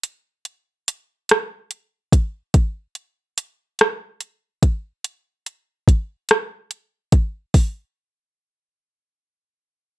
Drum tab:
HH |xxxxxx|xxxxxx|xxxxxx|o-----|
SD |---r--|---r--|---r--|------|
BD |-----o|o----o|--o--o|o-----|